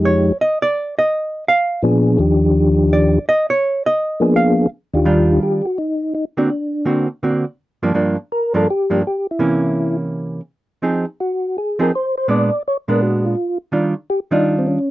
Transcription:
Already playing: F2 F3 G#3 D#4 G4
0.05 C#5
0.41 D#5
0.62 D5
0.99 D#5
1.48 F5
1.82 A#2 F3 B3 D4 G#4
2.18 D#2 D#3 F3 D4 G4
2.93 D5
3.29 D#5
3.50 C#5
3.86 D#5
4.20 F3 A#3 B3 D4 G#4
4.36 F5
4.93 D#2 D#3 D4 F4 G4
5.05 D#3 G3 D4 F4
5.43 G4
5.65 F#4
5.78 D#4
6.15 D#4
6.37 D3 A#3 C4 D4 F#4
6.85 D3 A#3 C4 F#4
7.23 D3 A#3 C4 F#4
7.83 G2 F3 A#3 D4
7.94 G2 F3 A#3 D4
8.32 A#4
8.54 G2 F3 A#3 D4 A4
8.70 G4
8.90 G2 F3 A#3 D4
9.07 G4
9.31 E4
9.39 C3 E3 A#3 C#4
10.82 F3 C4 D#4 G#4
11.20 F#4
11.58 G#4
11.79 F3 C4 D#4 G#4 A#4
11.95 C5
12.18 C5
12.28 A#2 G#3 B3 D4 D5
12.68 C#5
12.88 A#2 G#3 B3 D4 A#4
13.02 F#4
13.26 F4
13.72 D#3 G3 D4 F4
14.10 G4
14.31 D#3 G3 D4 D#4 F4
14.59 C4
14.67 C#4

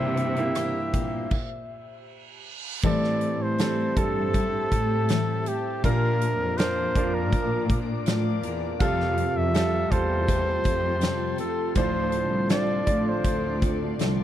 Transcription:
Already playing: G2 C3 E3 A#3 C4 E4 G4 C5 E5 G5
0.17 closed hi-hat
0.36 A#3 E4 G4, closed hi-hat
0.55 E3 A#3 C4 G4, cross-stick, closed hi-hat
0.94 A#2 A#3 C4 G4, kick, closed hi-hat
1.31 kick, crash, reverse cymbal
2.83 A2 E3 G3 C4 E4 G4 A4 C5 D5 E5 A5, kick, crash
3.04 snare
3.21 closed hi-hat
3.40 A2 C5
3.58 A2 E3 G3 C4 E4 A4, snare, closed hi-hat
3.96 G2 G3 C4 A4, kick, closed hi-hat
4.33 G3 C4 E4 A4, kick, closed hi-hat
4.72 A2 G3 C4 E4 A4, kick, closed hi-hat
5.08 A2 E3 G3 C4 E4 A4, snare, closed hi-hat
5.46 G3 C4 E4 G4 A4, closed hi-hat
5.84 A#2 F3 A#3 D4 F4 A#4 D5 D6, kick, closed hi-hat
6.21 closed hi-hat
6.40 F2
6.58 A#2 F3 A#3 D4 A#4 C5, snare, closed hi-hat
6.95 F2 F3 D4 A#4, kick, closed hi-hat
7.14 A#4
7.32 A#2 F3 A#3 D4 A#4, kick, closed hi-hat
7.69 A#3 D4 A#4, kick, closed hi-hat
8.06 A2 F3 D4 A#4, snare, closed hi-hat
8.43 E2 A#3 D4 A#4, closed hi-hat
8.80 F2 C3 G3 A3 C4 F4 A4 F5 G5 C6, kick, closed hi-hat
9.00 snare
9.18 closed hi-hat
9.36 F2 E5
9.54 C3 G3 A3 C4 F4 A4, snare, closed hi-hat
9.91 E2 G3 F4 A4 C5, kick, closed hi-hat
10.28 G3 A3 C4 A4, kick, closed hi-hat
10.64 F2 G3 A3 C4 A4, kick, closed hi-hat
11.01 F2 C3 G3 A3 C4 A4, snare, closed hi-hat
11.38 G3 A3 C4 A4, closed hi-hat
11.75 D2 A2 D3 F3 A3 C4 D4 A4 C5 D5, kick, closed hi-hat
12.12 closed hi-hat
12.31 C2
12.49 D3 F3 A3 C4 D4 A4 C5 D5, snare, closed hi-hat
12.86 A2 F3 D4 D5, kick, closed hi-hat
13.09 C5
13.24 D2 F3 A3 C4 A4, kick, closed hi-hat
13.62 A3 C4 A4, kick, closed hi-hat
13.99 C2 D3 F3 A3 C4 A4, snare, closed hi-hat

